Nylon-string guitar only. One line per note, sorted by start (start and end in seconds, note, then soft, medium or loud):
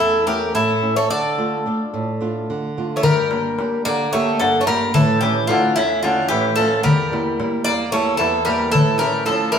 0.00 0.53 E2 medium
0.00 0.16 A3 soft
0.00 0.17 C#4 soft
0.00 0.17 E4 medium
0.26 0.71 A3 medium
0.26 0.72 C#4 medium
0.26 0.72 E4 medium
0.55 1.09 A2 medium
0.82 1.05 A3 soft
0.82 1.05 C#4 soft
0.82 1.05 E4 soft
1.10 1.64 D3 medium
1.38 1.64 A3 soft
1.38 1.65 D4 soft
1.38 1.66 F4 medium
1.66 2.10 A3 soft
1.66 2.10 D4 soft
1.66 2.11 F4 soft
1.94 2.47 A2 medium
2.21 2.65 A3 medium
2.21 2.65 D4 soft
2.21 2.66 F4 medium
2.50 3.03 D3 medium
2.77 2.99 A3 soft
2.77 2.99 D4 soft
2.77 2.99 F4 soft
3.04 3.57 G2 medium
3.32 3.58 A#3 soft
3.32 3.58 D4 soft
3.32 3.59 G4 medium
3.59 4.03 A#3 soft
3.59 4.03 D4 soft
3.59 4.03 G4 medium
3.86 4.39 D3 medium
4.14 4.57 A#3 medium
4.14 4.58 D4 soft
4.14 4.58 G4 medium
4.42 4.94 G2 medium
4.69 4.90 A#3 soft
4.69 4.91 D4 soft
4.69 4.91 G4 medium
4.96 5.48 A2 medium
5.23 5.48 A3 medium
5.23 5.49 C#4 soft
5.23 5.49 E4 medium
5.50 5.93 A3 soft
5.50 5.93 C#4 soft
5.50 5.94 E4 medium
5.78 6.30 E2 medium
6.04 6.47 A3 medium
6.04 6.48 C#4 soft
6.04 6.48 E4 medium
6.31 6.83 A2 medium
6.59 6.80 A3 soft
6.59 6.80 C#4 soft
6.59 6.80 E4 soft
6.85 7.37 E2 medium
7.12 7.39 G3 medium
7.12 7.38 A#3 soft
7.12 7.39 E4 medium
7.40 7.83 G3 medium
7.40 7.83 A#3 soft
7.40 7.83 E4 medium
7.67 8.19 E2 medium
7.92 8.36 G3 medium
7.92 8.36 A#3 soft
7.92 8.36 E4 medium
8.20 8.72 E2 medium
8.47 8.68 G3 soft
8.47 8.69 A#3 soft
8.47 8.69 E4 medium
8.74 9.26 A2 medium
9.00 9.26 A3 soft
9.00 9.27 C#4 soft
9.00 9.28 E4 medium
9.28 9.59 A3 medium
9.28 9.59 C#4 soft
9.28 9.59 E4 medium
9.56 9.59 E2 medium